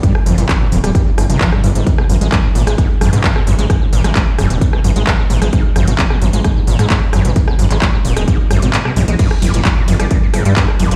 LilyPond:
<<
  \new Staff \with { instrumentName = "Acid bass" } { \clef bass \time 4/4 \key g \phrygian \tempo 4 = 131 g,16 r16 f,16 bes,16 g,16 bes,16 f,16 g16 g,16 g,16 g,16 c16 f16 g,16 g,16 aes,16 | aes,16 ces16 fis,16 aes16 aes,16 aes,16 bes,16 aes16 aes,16 r16 fis,16 ces16 aes,16 ces16 fis,16 aes16 | aes,16 aes,16 bes,16 aes16 aes,16 r16 fis,16 ces16 aes,16 ces16 fis,16 aes16 aes,16 aes,16 bes,16 aes16 | aes,16 r16 fis,16 ces16 aes,16 ces16 fis,16 aes16 aes,16 aes,16 bes,16 aes16 aes,16 r16 fis,16 ces16 |
aes,16 ces16 fis,16 aes16 aes,16 aes,16 bes,16 aes16 aes,16 r16 fis,16 ces16 aes,16 ces16 fis,16 aes16 | g,16 r16 f,16 bes,16 g,16 bes,16 f,16 g16 g,16 g,16 aes,16 g16 g,16 r16 f,16 bes,16 | }
  \new Staff \with { instrumentName = "Analog synth bass" } { \clef bass \time 4/4 \key g \phrygian r8 g,,16 g,,16 r8 d,,16 d,,16 r8 g,,16 g,,16 r8 g,,16 g,,16 | r8 aes,,16 aes,,16 r8 aes,,16 aes,,16 r8 aes,,16 aes,16 r8 aes,,16 aes,,16 | r8 aes,,16 aes,,16 r8 ees,,16 ees,,16 r8 aes,,16 aes,,16 r8 aes,,16 aes,,16 | r8 aes,,16 aes,,16 r8 aes,,16 aes,,16 r8 aes,,16 aes,16 r8 aes,,16 aes,,16 |
r8 aes,,16 aes,,16 r8 ees,,16 ees,,16 r8 aes,,16 aes,,16 r8 bes,,16 bes,,16 | r8 g,,16 g,,16 r8 g,,16 g,,16 r8 g,,16 g,16 r8 g,,16 g,,16 | }
  \new DrumStaff \with { instrumentName = "Drums" } \drummode { \time 4/4 <hh bd>16 ss16 hho16 hh16 <hc hh bd ss>8 hho16 <hh ss>16 <hh bd>8 <hho ss>16 hh16 <hc hh bd>16 ss16 hho16 hh16 | <hh bd>16 ss16 hho16 hh16 <hc hh bd ss>8 hho16 <hh ss>16 <hh bd>8 <hho ss>16 hh16 <hc hh bd>16 ss16 hho16 hh16 | <hh bd ss>8 hho16 <hh ss>16 <hc hh bd>8 <hho ss>16 hh16 <hh bd>16 ss16 hho16 hh16 <hc hh bd ss>8 hho16 <hh ss>16 | <hh bd>8 <hho ss>16 hh16 <hc hh bd>16 ss16 hho16 hh16 <hh bd ss>8 hho16 <hh ss>16 <hc hh bd>8 <hho ss>16 hh16 |
<hh bd>16 ss16 hho16 <hc hh>16 <hc hh bd ss>8 hho16 <hh ss>16 <hh bd>8 <hho ss>16 hh16 <hc hh>16 ss16 hho16 hh16 | <cymc hh bd>16 ss16 <hho cymr>16 hh16 <hc hh bd ss>8 <hho cymr>16 <hh ss>16 <hh bd>8 <hho cymr ss>16 hh16 <hc hh bd>16 ss16 <hho cymr>16 hh16 | }
>>